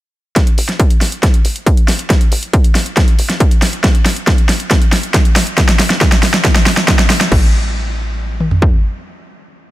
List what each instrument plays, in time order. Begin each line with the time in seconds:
0.36 kick, snare, closed hi-hat
0.47 closed hi-hat
0.58 analog synth bass A1, open hi-hat
0.69 snare, closed hi-hat
0.80 kick, closed hi-hat
0.90 closed hi-hat
1.01 analog synth bass A1, snare, open hi-hat
1.12 closed hi-hat
1.23 kick, snare, closed hi-hat
1.34 closed hi-hat
1.45 analog synth bass A1, open hi-hat
1.56 closed hi-hat
1.66 kick, closed hi-hat
1.77 closed hi-hat
1.88 analog synth bass A1, snare, open hi-hat
1.99 closed hi-hat
2.10 kick, snare, closed hi-hat
2.21 closed hi-hat
2.32 analog synth bass A1, open hi-hat
2.43 closed hi-hat
2.53 kick, closed hi-hat
2.64 closed hi-hat
2.75 analog synth bass A1, snare, open hi-hat
2.86 closed hi-hat
2.97 kick, snare, closed hi-hat
3.08 closed hi-hat
3.19 analog synth bass A1, open hi-hat
3.30 snare, closed hi-hat
3.40 kick, closed hi-hat
3.51 closed hi-hat
3.62 analog synth bass A1, snare, open hi-hat
3.73 closed hi-hat
3.84 kick, snare, closed hi-hat
3.95 closed hi-hat
4.06 analog synth bass G1, snare, open hi-hat
4.16 closed hi-hat
4.27 kick, snare, closed hi-hat
4.38 closed hi-hat
4.49 analog synth bass G1, snare, open hi-hat
4.60 closed hi-hat
4.71 kick, snare, closed hi-hat
4.82 closed hi-hat
4.92 analog synth bass G1, snare, open hi-hat
5.03 closed hi-hat
5.14 kick, snare, closed hi-hat
5.25 closed hi-hat
5.36 analog synth bass G1, snare, open hi-hat
5.47 closed hi-hat
5.58 kick, snare, closed hi-hat
5.69 snare, closed hi-hat
5.79 analog synth bass G1, snare, open hi-hat
5.90 snare, closed hi-hat
6.01 kick, snare, closed hi-hat
6.12 snare, closed hi-hat
6.23 analog synth bass G1, snare, open hi-hat
6.34 snare, closed hi-hat
6.45 kick, snare, closed hi-hat
6.56 snare, closed hi-hat
6.66 analog synth bass G1, snare, open hi-hat
6.77 snare, closed hi-hat
6.88 kick, snare, closed hi-hat
6.99 snare, closed hi-hat
7.10 analog synth bass G1, snare, open hi-hat
7.21 snare, closed hi-hat
7.32 analog synth bass A1, kick, crash
8.40 mid tom
8.51 floor tom
8.62 kick